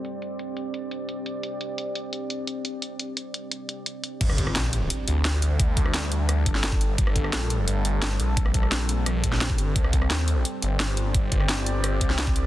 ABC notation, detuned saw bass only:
X:1
M:4/4
L:1/8
Q:1/4=173
K:Gm
V:1 name="Detuned saw bass" clef=bass
z8 | z8 | z8 | G,,,2 B,,,2 z D,,3- |
D,,4- D,, G,,,3 | G,,,2 B,,,2 G,,,3 B,,,- | B,,,4 B,,,3 G,,, | C,,2 E,,2 z G,,,3- |
G,,,4- G,,, C,,3 |]